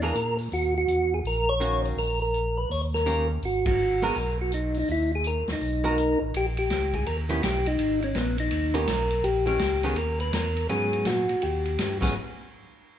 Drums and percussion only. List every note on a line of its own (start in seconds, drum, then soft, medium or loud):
0.15 closed hi-hat medium
0.39 open hi-hat soft
0.52 open hi-hat soft
0.88 closed hi-hat medium
1.25 open hi-hat soft
1.61 closed hi-hat medium
1.85 open hi-hat soft
1.98 open hi-hat soft
2.34 closed hi-hat medium
2.71 open hi-hat soft
2.94 snare soft
3.06 closed hi-hat medium
3.43 open hi-hat soft
3.66 kick medium
3.66 ride medium
4.02 open hi-hat soft
4.15 open hi-hat soft
4.52 closed hi-hat medium
4.74 open hi-hat soft
4.88 open hi-hat soft
5.24 closed hi-hat medium
5.47 snare medium
5.47 open hi-hat soft
5.61 open hi-hat soft
5.98 closed hi-hat medium
6.34 ride medium
6.57 ride soft
6.70 snare medium
6.70 hi-hat pedal medium
6.70 ride medium
6.93 kick medium
6.93 ride soft
7.06 ride medium
7.29 ride soft
7.43 snare medium
7.43 hi-hat pedal medium
7.43 ride medium
7.66 ride soft
7.79 ride medium
8.02 ride soft
8.15 snare medium
8.15 hi-hat pedal medium
8.15 ride medium
8.38 ride soft
8.51 ride medium
8.75 ride soft
8.87 snare medium
8.87 hi-hat pedal medium
8.87 ride medium
9.10 ride soft
9.24 ride medium
9.47 ride soft
9.59 snare medium
9.59 hi-hat pedal medium
9.59 ride medium
9.83 ride soft
9.96 ride medium
10.20 ride soft
10.33 snare medium
10.33 hi-hat pedal medium
10.33 ride medium
10.56 ride soft
10.69 ride soft
10.93 ride soft
11.05 snare medium
11.05 hi-hat pedal medium
11.05 ride medium
11.29 ride soft
11.42 ride medium
11.65 ride soft
11.79 snare medium
11.79 hi-hat pedal medium
11.79 ride medium
12.02 kick medium
12.02 snare medium
12.02 crash medium